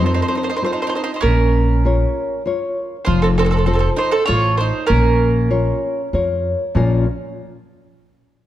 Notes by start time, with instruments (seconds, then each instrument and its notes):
Already playing: upright bass F2
0.02 nylon-string guitar C4 F4 A4
0.06 mandolin D#4 C5
0.14 mandolin D#4 C5
0.22 mandolin D#4 C5
0.28 mandolin D#4 C5
0.35 mandolin D#4 C5
0.43 mandolin D#4 C5
0.50 mandolin D#4 C5
0.56 mandolin D#4 C5
0.62 nylon-string guitar C4 F4 A4, mandolin D#4 C5
0.73 mandolin D#4 C5
0.82 mandolin D#4 C5
0.87 mandolin D#4 C5
0.95 mandolin D#4 C5
1.04 mandolin D#4 C5
1.14 mandolin D#4 C5
1.21 upright bass A#1, nylon-string guitar A#3, mandolin C#4 A#4
1.85 nylon-string guitar F4 A#4 C#5
2.46 nylon-string guitar F4 A#4 C#5
3.05 upright bass F1, nylon-string guitar F3, mandolin F4 C5
3.22 mandolin C4 A4
3.38 mandolin C4 A4
3.44 mandolin C4 A4
3.51 mandolin C4 A4
3.57 mandolin C4 A4
3.66 mandolin C4 A4, nylon-string guitar F4 A4 C5
3.73 mandolin C4 A4
3.79 mandolin C4 A4
3.96 mandolin D#4 C5
4.11 mandolin C4 A4
4.25 upright bass A1, mandolin F4 C#5, nylon-string guitar F4 A4
4.57 mandolin D#4 C5
4.86 upright bass A#1, nylon-string guitar A#3, mandolin C#4 A#4
5.50 nylon-string guitar F4 A#4 C#5
6.13 upright bass F2, nylon-string guitar F4 A#4 C#5
6.75 upright bass A#1, nylon-string guitar A#2 F3 C#4 F4 A#4 F5